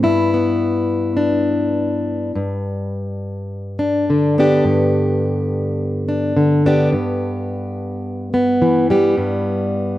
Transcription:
Already playing: B3
0.03 G2 E4
0.34 B3
1.17 D4
2.35 G2
3.79 D4
4.10 D3
4.38 B3 D4 G4
4.65 G2
6.09 D4
6.37 D3
6.66 B3 D4 G4
6.93 G2
8.34 B3
8.62 E3
8.90 G3 B3 G4
9.17 G2

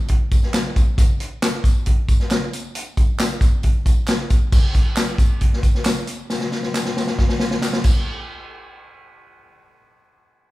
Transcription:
0.08 kick, closed hi-hat
0.31 kick, closed hi-hat, tambourine
0.43 snare
0.53 snare, clap, closed hi-hat, tambourine
0.76 kick, closed hi-hat, tambourine
0.98 kick, closed hi-hat, tambourine
1.20 closed hi-hat, tambourine
1.42 snare, clap, closed hi-hat, tambourine
1.64 kick, closed hi-hat, tambourine
1.86 kick, closed hi-hat
2.08 kick, closed hi-hat, tambourine
2.20 snare
2.30 snare, clap, closed hi-hat, tambourine
2.53 closed hi-hat, tambourine
2.75 closed hi-hat, tambourine
2.97 kick, closed hi-hat, tambourine
3.19 snare, clap, closed hi-hat, tambourine
3.41 kick, closed hi-hat, tambourine
3.63 kick, closed hi-hat, tambourine
3.86 kick, closed hi-hat, tambourine
4.08 snare, clap, closed hi-hat, tambourine
4.30 kick, closed hi-hat, tambourine
4.52 kick, crash, tambourine
4.74 kick, closed hi-hat, tambourine
4.97 snare, clap, closed hi-hat, tambourine
5.18 kick, closed hi-hat, tambourine
5.41 kick, closed hi-hat
5.53 snare
5.63 kick, closed hi-hat, tambourine
5.75 snare
5.85 snare, clap, closed hi-hat, tambourine
6.07 closed hi-hat, tambourine
6.30 snare, tambourine
6.41 snare
6.52 snare, tambourine
6.63 snare
6.74 snare, clap, tambourine
6.85 snare
6.97 snare, tambourine
7.07 snare
7.18 kick, snare
7.29 snare
7.40 snare, tambourine
7.51 snare
7.62 snare, clap, tambourine
7.73 snare
7.84 kick, crash, tambourine

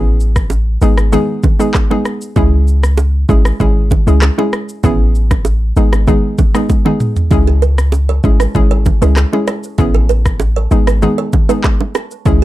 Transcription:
Already playing: A1 B3 C#4 E4 G#4
0.20 shaker
0.36 kick, cross-stick, shaker
0.50 high bongo, shaker
0.82 G#1 G#3 B3 D#4 G#4, low bongo, shaker
0.98 cross-stick, shaker
1.12 G#3 B3 D#4 G#4, low conga, shaker
1.43 kick, high bongo, low bongo, low conga, shaker
1.59 G#3 B3 D#4 G#4, shaker
1.74 kick, cross-stick, clap, high bongo, shaker
1.90 G#3 B3 D#4 G#4, low bongo
2.05 cross-stick, shaker
2.21 shaker
2.36 C#2 G#3 C#4 E4 G#4, kick, low conga, shaker
2.68 shaker
2.83 cross-stick, shaker
2.98 high bongo, shaker
3.29 G#1 G#3 C#4 E4 G#4, kick, low bongo, shaker
3.45 cross-stick, shaker
3.60 G#1 G#3 C#4 E4 G#4, kick, low conga, shaker
3.91 kick, high bongo, low bongo, low conga, shaker
4.07 C#2 G#3 C#4 E4 G#4, shaker
4.22 cross-stick, clap, high bongo, shaker
4.38 G#3 C#4 E4 G#4, low bongo
4.53 cross-stick, shaker
4.69 shaker
4.83 A1 B3 C#4 E4 G#4, kick, low conga, shaker
5.15 shaker
5.31 kick, cross-stick, low bongo, shaker
5.45 high bongo, shaker
5.76 G#1 G#3 B3 D#4 G#4, low bongo, shaker
5.93 cross-stick, high bongo, shaker
6.07 G#3 B3 D#4 G#4, kick, low conga, shaker
6.38 kick, high bongo, low bongo, low conga, shaker
6.54 G#3 B3 D#4 G#4, cross-stick, shaker
6.69 kick, high tom, high bongo, shaker
6.85 G#3 B3 D#4 G#4, mid tom, low bongo
7.00 mid tom, shaker
7.16 floor tom, shaker
7.31 C#2 G#3 C#4 E4 G#4, kick, low conga, shaker
7.47 G#4
7.62 B4, shaker
7.78 cross-stick, shaker
7.92 high bongo, shaker
8.09 C#5
8.24 G#1 G#3 C#4 E4 G#4, kick, low bongo, shaker
8.40 B4, cross-stick, shaker
8.55 G#1 G#3 C#4 E4 G#4, kick, low conga, shaker
8.71 C#5
8.86 kick, high bongo, low bongo, low conga, shaker
9.02 C#2 G#3 C#4 E4 G#4 B4, shaker
9.17 cross-stick, clap, high bongo, shaker
9.33 G#3 C#4 E4 G#4, low bongo
9.48 C#5, cross-stick, shaker
9.64 shaker
9.78 A1 B3 C#4 E4 G#4, kick, low conga, shaker
9.94 A4
10.09 B4, shaker
10.26 kick, cross-stick, shaker
10.40 high bongo, shaker
10.56 C#5
10.71 G#1 G#3 B3 D#4 G#4, low bongo, shaker
10.87 B4, cross-stick, shaker
11.02 G#3 B3 D#4 G#4, low conga, shaker
11.18 C#5
11.33 kick, high bongo, low bongo, low conga, shaker
11.49 G#3 B3 D#4 G#4 B4, shaker
11.64 kick, cross-stick, clap, high bongo, shaker
11.81 low bongo
11.95 G#4, cross-stick, shaker
12.11 shaker
12.25 C#2 G#3 C#4 E4 G#4, kick, low conga, shaker

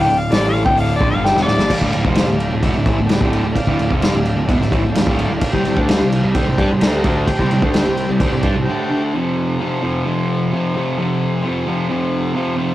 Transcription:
Already playing: A4 D5 F5
0.02 G5
0.08 D1 D2 A2
0.18 F5
0.29 A1 A2 A4 D5 F5, snare, open hi-hat
0.34 E3 A3
0.49 F5
0.65 D1 D2 A2 D3 G5, kick
0.76 A4 D5 E5 F5, open hi-hat
0.96 D5
1.00 A#1 A#2 F3 A4 D5 G5, kick
1.10 G1 G2 F5
1.14 D3 G3
1.24 A4 D5 E5 G5, snare
1.35 E1 E2 B2, snare
1.42 F4 A4 D5
1.47 D1 D2 A2, snare
1.58 A#1 A#2 F3, snare
1.69 A4 D5 F5, kick, crash
1.81 D1 D2 A2, kick
1.93 D1 D2 A2, crash
2.04 F1 F2 C3 F3, kick
2.14 A4 D5 F5, snare, crash
2.28 D1 D2 A2
2.40 crash
2.52 D1 D2 A2
2.61 E1 E2 B2 A4 D5 E5, kick, crash
2.75 D1 D2 A2
2.86 A1 A2 E3, kick, crash
2.98 D1 D2 A2
3.06 D1 A4 D5 G5, crash
3.10 D2 A2, snare
3.21 D1 D2 A2 D3, kick
3.33 crash
3.44 D1 D2 A2
3.53 A4 D5 F5, kick, crash
3.67 D1 D2 A2, kick
3.79 D1 D2 A2, crash
3.90 F1 F2 C3 F3, kick
3.99 A4 D5 F5, crash
4.03 snare
4.14 D1 D2 A2
4.25 crash
4.36 D1 D2 A2
4.46 E1 E2 A4 D5 E5, kick, crash
4.50 B2
4.60 D1 D2 A2, snare
4.72 A1 A2 E3, kick, crash
4.82 D1 D2 A2
4.92 D1 D2 A2 A4 D5 F5, crash
4.96 snare
5.06 D1 D2 A2 D3, kick
5.19 crash
5.30 D1 D2 A2
5.37 A4 D5 F5
5.41 kick, crash
5.50 C2 C3 G3 G4 C5 G5, kick
5.65 C2 C3 G3, crash
5.77 D2 D3 A3 D4, kick
5.86 G4 C5 F5, snare, crash
6.00 C2 C3 G3
6.12 crash
6.23 C2 C3 G3
6.33 D2 D3 G4 C5 G5, kick, crash
6.38 A3
6.46 C2 C3 G3
6.58 G2 G3 D4, kick, crash
6.70 C2 C3 G3
6.78 G4 C5 A#5, crash
6.82 D2 D3 A3 D4, snare
7.04 D2 D3 A3, kick, crash
7.08 D4
7.25 G4 C5 G5, kick, crash
7.39 C2 C3 G3, kick
7.51 C2 C3 G3, crash
7.62 D2 D3 A3 D4, kick
7.71 G4 C5 G5, crash
7.75 snare
7.86 C2 C3 G3
7.97 crash
8.09 C2 C3 G3
8.18 D2 D3 G4 C5 D5, kick, crash
8.23 A3
8.32 C2 C3 G3
8.43 G2 G3 D4, kick, crash
8.55 C2 C3 G3
8.63 G4 C5 G5
8.68 D3 A3 D4
8.90 D3 A3 D4
9.14 F2 C3 F3
9.59 F2 C3 F3
9.82 F2 C3 F3
10.05 F2 C3 F3
10.52 F2 C3 F3
10.74 F2 C3 F3
10.98 F2 C3 F3
11.43 F2 C3 F3
11.66 F2 C3 F3
11.89 F2 C3 F3
12.34 F2 C3 F3
12.56 F2 C3 F3

